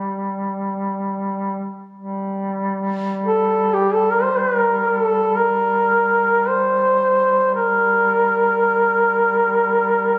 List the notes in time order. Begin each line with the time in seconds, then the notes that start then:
Already playing: G3
1.95 G3
3.25 A4
3.73 G4
3.94 A4
4.11 A#4
4.24 C5
4.39 B4
4.57 A#4
4.87 A#4
4.99 A4
5.36 A#4
6.48 C5
7.55 A#4